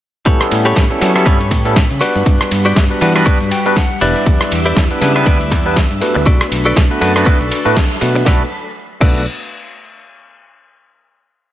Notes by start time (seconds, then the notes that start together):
0.25 A2 G3 B3 C#4 E4 G4 A4 B4 C#5 B5, kick, closed hi-hat
0.41 cross-stick, closed hi-hat
0.51 A2, open hi-hat, ride
0.65 G4 A4 B4 C#5, closed hi-hat
0.76 A2, kick, snare, closed hi-hat
0.90 G3 B3 C#4 E4 A4, closed hi-hat
1.01 F#3 G3 B3 C#4 E4 A4, muted clean electric guitar stroke, snare, open hi-hat, ride
1.15 G3 B3 C#4 E4 A4, cross-stick, closed hi-hat
1.26 G2 G3 B3 C#4 E4 G4 A4 B4 C#5, kick, closed hi-hat
1.41 closed hi-hat
1.51 A2, kick, open hi-hat, ride
1.65 G3 B3 C#4 E4 A4, closed hi-hat
1.76 kick, snare, closed hi-hat
1.91 C#3, closed hi-hat
2.00 G3 B3 D4 F#4 G4 B4 D5 F#5, open hi-hat, ride
2.15 G2, closed hi-hat
2.26 kick, closed hi-hat
2.41 cross-stick, closed hi-hat
2.51 G2, open hi-hat, ride
2.65 F#4 G4 B4 D5, closed hi-hat
2.76 G2, kick, snare, closed hi-hat
2.90 G3 B3 D4 F#4 B4, closed hi-hat
3.01 E3 G3 B3 D4 F#4 B4, muted clean electric guitar stroke, open hi-hat, ride
3.15 G3 B3 D4 F#4 B4, cross-stick, closed hi-hat
3.26 G3 B3 D4 F#4 G4 B4 D5, kick, closed hi-hat
3.41 G2, closed hi-hat
3.51 G5, open hi-hat, ride
3.66 G3 B3 D4 F#4 B4, closed hi-hat
3.76 F#5, kick, snare, open hi-hat
3.91 closed hi-hat
4.01 E1 G3 B3 D4 E4 G4 B4 D5 E5 D6, open hi-hat, ride
4.16 closed hi-hat
4.26 E2, kick, closed hi-hat
4.41 cross-stick, closed hi-hat
4.52 E2, open hi-hat, ride
4.65 E4 G4 B4 D5, closed hi-hat
4.76 E2, kick, snare, closed hi-hat
4.91 G3 B3 D4 E4 B4, closed hi-hat
5.01 C#3 G3 B3 D4 E4 B4, muted clean electric guitar stroke, snare, open hi-hat, ride
5.15 G3 B3 D4 E4 B4, cross-stick, closed hi-hat
5.26 D2 D4 E4 G4 B4 D5, kick, closed hi-hat
5.41 closed hi-hat
5.51 E2, kick, open hi-hat, ride
5.65 G3 B3 D4 E4 B4, closed hi-hat
5.76 kick, snare, closed hi-hat
5.91 G2, closed hi-hat
6.00 A3 B3 D4 F#4 B4, open hi-hat, ride
6.15 D2, muted clean electric guitar stroke, closed hi-hat
6.26 B1 D4 F#4 A4 B4 D5 B5, kick, closed hi-hat
6.41 cross-stick, closed hi-hat
6.51 B1, open hi-hat, ride
6.65 F#4 A4 B4 D5, closed hi-hat
6.76 kick, snare, closed hi-hat
6.90 A3 B3 D4 F#4 B4, closed hi-hat
7.01 F#2 A3 B3 D4 F#4 B4, muted clean electric guitar stroke, open hi-hat, ride
7.15 A3 B3 D4 F#4 B4, cross-stick, closed hi-hat
7.26 A3 B3 D4 F#4 A4 B4 D5, kick, closed hi-hat
7.41 B1, closed hi-hat
7.51 open hi-hat, ride
7.65 A2 A3 B3 D4 F#4 B4, closed hi-hat
7.76 kick, snare, open hi-hat
7.91 closed hi-hat
8.01 B2 A3 B3 D4 F#4 B4, open hi-hat, ride
8.15 muted clean electric guitar stroke, closed hi-hat
8.25 B1 A3 B3 D4 F#4 A4 B4 D5 B5, kick, snare
9.00 B1 A3 B3 D4 F#4 A4 B4 D5, kick, crash